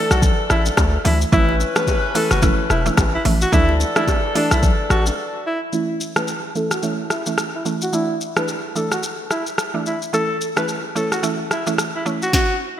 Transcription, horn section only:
Already playing: E3 D4 A4
1.32 E3 C#4 B4
3.53 E3 D4 A4

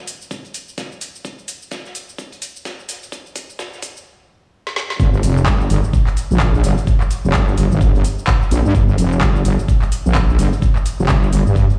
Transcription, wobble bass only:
5.00 G1
5.23 F1
5.47 G1
5.70 G1
6.31 A#1
6.64 G1
7.25 F1
7.34 G1
7.58 G1
7.71 G1
8.51 A#1
8.65 G2
8.75 G1
8.98 F1
9.22 G1
9.45 G1
10.06 A#1
10.39 G1
11.00 F1
11.09 G1
11.33 G1
11.46 G2

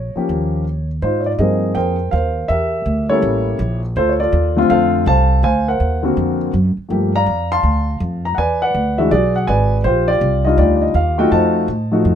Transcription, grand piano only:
Already playing: C#5
0.16 F3 A#3 C#4 G4
1.02 D#4 F4 C5
1.21 C#5
1.26 D5
1.38 F3 A#3 C4 G#4 A#4 C5 D#5
1.75 A#4 C5 G5
2.11 A#4 C5 F5
2.48 G4 A#4 E5
3.09 G3 A#3 C#4 E4 G4 A4 C#5
3.97 F4 A4 C5
4.09 C#5
4.20 F4 A4 D5
4.56 D3 A3 C4 F4
4.70 A4 C5 F5
5.07 C5 F5 A5
5.44 C5 F5 G#5
5.68 A#4 C5 F#5
6.03 D3 A#3 C4 F#4
6.89 F3 A3 A#3 G4
7.16 D5 F5 A#5
7.52 F5 A5 C6
8.25 A#5
8.35 F#5 G#5
8.39 B4 D5
8.62 B4 D5 F#5
8.98 E3 G#3 D4 F#4 E5
9.11 F#4 G#4 D5
9.36 F#5
9.47 B4 D5 G#5
9.84 F4 G4 C5
10.08 F4 G4 D5
10.45 G3 D4 D#4 F4 D#5
10.58 F4 G4 D5
10.76 D5
10.82 D#5
10.95 F5
11.18 A3 D#4 F4 F#4 G5
11.32 C5 D#5 A5
11.91 F3 A3 D#4 F#4

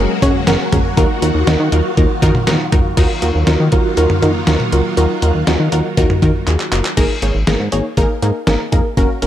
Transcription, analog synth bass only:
0.22 F#2
0.47 F#1
0.73 C#2
0.97 D#2
1.22 D#2
1.35 D#2
1.47 D#2
1.60 D#3
1.72 D#2
1.98 D#2
2.22 D#3
2.47 D#2
2.73 C#2
2.97 D#2
3.22 D#2
3.35 D#2
3.47 D#2
3.60 D#3
3.73 D#2
3.97 D#2
4.22 D#3
4.47 D#2
4.72 C#2
4.97 D#2
5.22 D#2
5.35 D#2
5.47 D#2
5.60 D#3
5.72 D#2
5.98 D#2
6.22 D#3
6.47 D#2
6.72 F#1
6.97 G#1
7.22 G#1
7.35 G#1
7.47 G#1
7.60 G#2
7.72 G#1
7.97 G#1
8.22 G#2
8.47 G#1
8.73 F1
8.97 F#1
9.22 F#1

